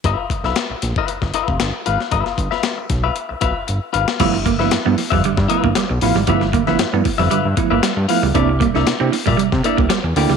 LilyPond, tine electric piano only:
\new Staff \with { instrumentName = "Tine electric piano" } { \time 4/4 \key g \mixolydian \tempo 4 = 116 r1 | r1 | <f a b e'>16 r16 <g, d>16 <f a b e'>16 r16 <f a b e'>16 r16 <g, d>16 <g, d>16 r16 <f a b e'>16 <b e'>16 r8 <f a b e'>16 r16 | <f a b e'>16 r16 <g, d>16 <f a b e'>16 r16 <f a b e'>16 r16 <g, d>16 <g, d>16 r16 <f a b e'>16 <b e'>16 r8 <f a b e'>16 r16 |
<bes d' e'>16 r16 <c g>16 <bes d' e'>16 r16 <bes d' e'>16 r16 <c g>16 <c g>16 r16 <bes d' e'>16 <d' e'>16 r8 <bes d' e'>16 r16 | }